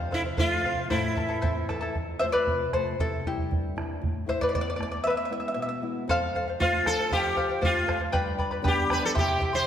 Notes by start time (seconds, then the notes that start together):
Already playing: F2 C5 F5
0.11 C3 E4 A4 C5 E5 F5, bombo low
0.24 C5 F5
0.37 A3 F4 A4 C5 F5, bombo low
0.64 C3 A4 C5 F5
0.77 C5 F5
0.90 A2 E4 A4 C5 E5 A5, bombo low
1.15 E3 E4 A4 E5 A5, bombo low
1.28 E4 A4 A5
1.42 C4 E4 A4 C5 E5 A5, bombo low
1.69 E3 E4 A4 E5 A5, bombo rim, bombo low
1.81 E4 A4 A5
1.95 F2, bombo low
2.19 F3 A3 C4 C5 E5, bombo low
2.32 B4 D5, bombo low
2.47 C3, bombo low
2.73 F3 A3 C4 A4 C5, bombo rim, bombo low
2.99 C3 E4 A4, bombo low
3.25 G3 C4 E4 G4, bombo low
3.39 bombo low
3.51 G2, bombo low
3.76 G3 C4 E4, bombo rim, bombo low
4.01 A2, bombo low
4.26 A3 C4 E4 C5 E5, bombo low
4.41 B4 D5, bombo low
4.49 D5
4.53 E2 D5, bombo low
4.61 D5
4.70 D5
4.76 A3 C4 E4 D5
4.81 D5, bombo rim, bombo low
4.91 D5
5.04 E2 B4 E5
5.10 E5
5.17 E5
5.25 E5
5.29 G#3 B3 E4 E5
5.40 E5
5.48 E5
5.54 B2 E5
5.62 E5
5.69 E5
5.82 G#3 B3 E4
6.08 F2 A4 C5 F5, bombo low
6.35 A4 C5 F5, bombo low
6.48 C5 F5
6.59 F3 A3 C4 F4 A4 C5 F5, bombo low
6.86 A4 C5 F5 A5, bombo rim, bombo low
6.99 C5 F5
7.09 F2 G4 A4 C5 F5, bombo low
7.14 G5
7.36 A4 C5 F5, bombo low
7.49 C5 F5
7.61 F3 A3 C4 F4 A4 C5 F5, bombo low
7.87 A4 C5 F5, bombo rim, bombo low
7.99 C5 F5
8.12 G2 G4 B4 D5 G5 B5, bombo low
8.38 B4 D5 G5 B5, bombo low
8.51 B4 D5 B5
8.62 G3 B3 D4 G4 B4 D5 G5 B5, bombo low
8.68 G4 G5
8.90 B4 D5 G5 B5, bombo rim, bombo low
9.02 A4 B4 D5 A5 B5
9.15 C3 E4 G4 E5 G5 C6, bombo low
9.19 G4
9.40 E4 E5 G5 C6, bombo low
9.53 E4 C5 E5 C6